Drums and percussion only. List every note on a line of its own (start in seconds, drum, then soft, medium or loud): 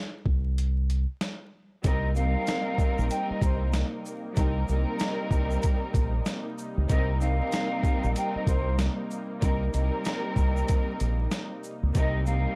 0.26 kick medium
0.58 closed hi-hat medium
0.90 closed hi-hat medium
1.21 snare loud
1.21 closed hi-hat medium
1.84 kick loud
1.84 closed hi-hat medium
1.84 shaker medium
2.15 shaker soft
2.15 shaker medium
2.47 snare loud
2.47 closed hi-hat medium
2.47 shaker medium
2.78 kick loud
2.78 shaker medium
2.78 shaker soft
2.98 shaker medium
3.10 closed hi-hat medium
3.10 shaker medium
3.42 kick loud
3.42 closed hi-hat medium
3.42 shaker medium
3.73 snare loud
3.73 closed hi-hat medium
3.73 shaker medium
4.06 shaker medium
4.36 kick loud
4.36 closed hi-hat loud
4.36 shaker medium
4.68 shaker soft
4.68 shaker medium
4.99 snare loud
4.99 closed hi-hat medium
4.99 shaker medium
5.31 kick medium
5.31 shaker medium
5.31 shaker soft
5.51 shaker medium
5.63 kick loud
5.63 closed hi-hat medium
5.63 shaker medium
5.94 kick loud
5.94 closed hi-hat medium
5.94 shaker medium
6.26 snare loud
6.26 closed hi-hat medium
6.26 shaker medium
6.58 shaker medium
6.89 kick loud
6.89 closed hi-hat loud
6.89 shaker medium
7.21 shaker soft
7.21 shaker medium
7.52 snare loud
7.52 closed hi-hat medium
7.52 shaker medium
7.83 kick loud
7.83 shaker medium
7.83 shaker soft
8.04 shaker medium
8.16 closed hi-hat medium
8.16 shaker medium
8.47 kick loud
8.47 closed hi-hat medium
8.47 shaker medium
8.79 snare loud
8.79 closed hi-hat medium
8.79 shaker medium
9.11 shaker medium
9.42 kick loud
9.42 closed hi-hat loud
9.42 shaker medium
9.74 closed hi-hat medium
9.74 shaker soft
9.74 shaker medium
10.05 snare loud
10.05 closed hi-hat medium
10.05 shaker medium
10.36 kick loud
10.36 shaker medium
10.36 shaker soft
10.57 shaker medium
10.68 kick loud
10.68 closed hi-hat medium
10.68 shaker medium
11.00 closed hi-hat medium
11.00 shaker medium
11.31 snare loud
11.31 closed hi-hat medium
11.31 shaker medium
11.63 shaker medium
11.95 kick loud
11.95 closed hi-hat loud
11.95 shaker medium
12.26 shaker soft
12.26 shaker medium